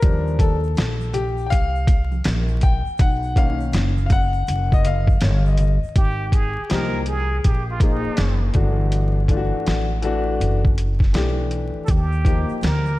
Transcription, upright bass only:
0.03 D#2
0.77 A#1
1.52 C2
2.26 A#1
2.87 muted upright bass stroke
3.00 B1
3.73 F#1
4.48 F#1
5.22 G1
5.83 muted upright bass stroke
5.96 G#1
6.58 muted upright bass stroke
6.70 C2
7.45 A#1
8.06 muted upright bass stroke
8.18 F#1
8.55 G1
9.67 A1
10.40 F#1
11.15 B1
11.76 muted upright bass stroke
11.88 D#2
12.50 muted upright bass stroke
12.62 D2

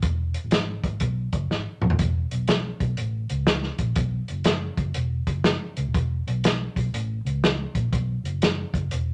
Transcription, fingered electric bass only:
0.03 E1
0.44 G#1
0.84 G#1
1.01 B1
1.33 F#1
1.50 G#1
1.83 E1
1.91 D#1
1.99 E1
2.32 B1
2.80 B1
2.98 A1
3.30 C#2
3.79 A#1
3.97 B1
4.30 F#1
4.78 F#1
4.96 E1
5.27 F#1
5.77 C#2
5.86 D#1
5.95 E1
6.27 B1
6.76 B1
6.94 A1
7.25 C#2
7.75 A#1
7.93 B1
8.24 F#1
8.74 F#1
8.92 E1

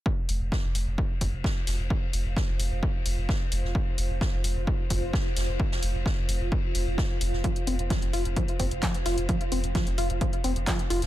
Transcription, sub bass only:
0.29 F1
0.41 F1
0.64 F1
0.75 F1
0.87 F1
1.21 F1
1.33 F1
1.67 F1
1.79 F1
2.13 F1
2.25 F1
2.48 F1
2.59 F1
2.71 F1
3.06 F1
3.18 F1
3.52 F1
3.64 F1
3.98 F1
4.10 F1
4.33 F1
4.44 F1
4.56 F1
4.90 F1
5.02 F1
5.37 F1
5.48 F1
5.83 F1
5.95 F1
6.18 F1
6.29 F1
6.41 F1
6.75 F1
6.87 F1
7.21 F1
7.33 F1
7.67 F1
7.79 F1
8.02 F1
8.13 F1
8.25 F1
8.60 F1
8.71 F1
9.06 F1
9.18 F1
9.52 F1
9.64 F1
9.87 F1
9.98 F1
10.10 F1
10.44 F1
10.56 F1
10.90 F1
11.02 F1

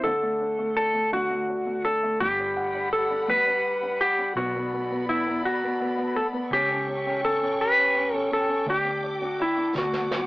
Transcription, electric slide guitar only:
0.04 A4
0.77 A4
1.13 F#4
1.85 A4
2.20 G4
2.93 A4
3.29 B4
4.01 G4
4.37 F#4
5.09 E4
5.45 F#4
6.16 A4
6.53 G4
7.25 A4
7.61 B4
8.15 A4
8.33 A4
8.70 G4
9.21 F#4
9.42 E4
9.78 F#4

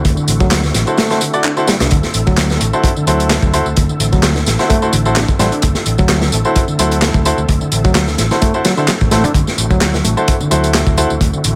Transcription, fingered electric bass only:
0.05 D2
0.28 A1
0.41 D2
0.74 A1
1.80 C2
1.92 D2
2.14 A1
2.27 D2
2.61 A1
3.07 D2
3.43 D2
3.66 D2
3.77 D2
4.00 A1
4.13 D2
4.47 A1
4.93 A1
5.39 A1
5.63 D2
5.86 A1
5.99 D2
6.33 A1
6.79 D2
7.14 D2
7.38 D2
7.49 D2
7.72 A1
7.85 D2
8.19 A1
9.01 A1
9.12 A1
9.24 F#2
9.34 D2
9.58 A1
9.71 D2
10.05 A1
10.52 D2
10.87 D2
11.11 D2
11.21 D2
11.45 A1

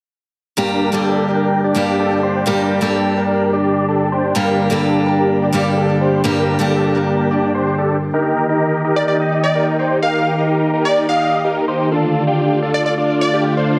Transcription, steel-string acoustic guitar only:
0.57 G2 G3 A#3 D4 G4
0.92 G2 G3 A#3 D4 G4
1.75 G2 G3 A#3 D4 G4
2.46 G2 G3 A#3 D4 G4
2.81 G2 G3 A#3 D4 G4
4.35 G2 G3 A#3 D4 G4
4.70 G2 G3 A#3 D4 G4
5.53 G2 G3 A#3 D4 G4
6.24 G2 G3 A#3 D4 G4
6.59 G2 G3 A#3 D4 G4

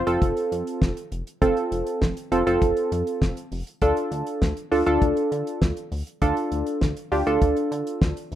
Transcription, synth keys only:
0.07 C4 F4 A4
1.42 C4 F4 A4
2.32 C4 F4 A4
2.47 C4 F4 A4
3.82 D4 F4 A4
4.72 D4 F4 A4
4.86 D4 F4 A4
6.22 D4 F4 A4
7.12 D4 F4 G4
7.27 D4 F4 A4

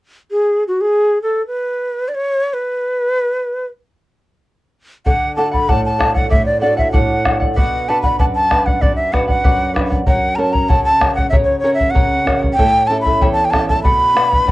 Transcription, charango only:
5.06 A4 D5 F#5
5.37 A4 D5 F#5
5.51 D5 F#5
5.68 A4 D5 F#5
5.98 A4 D5 F#5
6.14 D5 F#5
6.29 A4 D5 F#5
6.60 A4 D5 F#5
6.77 D5 F#5
6.92 A4 D5 F#5
7.24 A4 D5 F#5
7.40 D5 F#5
7.56 B4 D5 F#5
7.89 B4 D5 F#5
8.04 D5 F#5
8.19 B4 D5 F#5
8.50 B4 D5 F#5
8.66 D5 F#5
8.81 B4 D5 F#5
9.12 B4 D5 F#5
9.27 D5 F#5
9.44 B4 D5 F#5
9.73 B4 D5 F#5
9.90 D5 F#5
10.06 A#4 C#5 F#5
10.37 A#4 C#5 F#5
10.53 C#5 F#5
10.68 A#4 C#5 F#5
11.00 A#4 C#5 F#5
11.17 C#5 F#5
11.32 A#4 C#5 F#5
11.64 A#4 C#5 F#5
11.78 C#5 F#5
11.95 A#4 C#5 F#5
12.27 A#4 C#5 F#5
12.43 C#5 F#5
12.58 E4 A4 C#5 E5 G5
12.90 E4 A4 E5 G5
13.05 E4 A4 E5
13.22 E4 A4 C#5 E5 G5
13.52 E4 A4 E5 G5
13.69 E4 A4 E5
13.84 B4 D5 F#5
14.16 B4 D5 F#5
14.30 D5 F#5
14.47 B4 D5 F#5

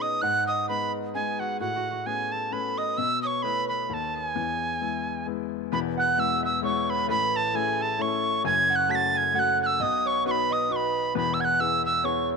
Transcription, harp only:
Already playing: G#4 B4 C#5
0.02 D#5
0.23 F#5
0.48 D#5
0.68 B4
1.14 G#4
1.40 F#4
1.61 F#4
1.76 F#4
1.91 F#4
2.07 G#4
2.32 A4
2.53 B4
2.78 D#5
2.98 E5
3.25 C#5
3.45 B4
3.70 B4
3.90 A4
4.15 G#4
5.72 B4
5.97 F#5
6.18 E5
6.43 E5
6.63 C#5
6.89 B4
6.94 B4
6.99 B4
7.09 B4
7.34 A4
7.55 G#4
7.80 A4
8.00 C#5
8.45 G#5
8.70 F#5
8.89 A5
9.15 G#5
9.35 F#5
9.80 D#5
10.05 C#5
10.26 B4
10.50 D#5
10.70 B4
11.15 B4
11.40 F#5
11.59 E5
11.84 E5
12.04 C#5

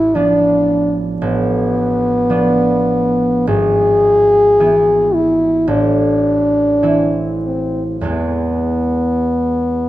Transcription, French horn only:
Already playing: E4
0.15 D4
1.21 B3
3.49 G#4
5.14 E4
5.68 D4
7.44 C4
8.08 B3

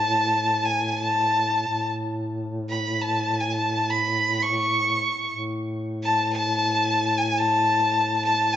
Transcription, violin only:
Already playing: A5
0.65 G#5
0.91 A5
2.69 B5
3.01 A5
3.40 G#5
3.52 A5
3.90 B5
4.42 C#6
6.03 A5
6.33 A5
7.18 G#5
7.38 A5
8.25 A5
8.53 G#5

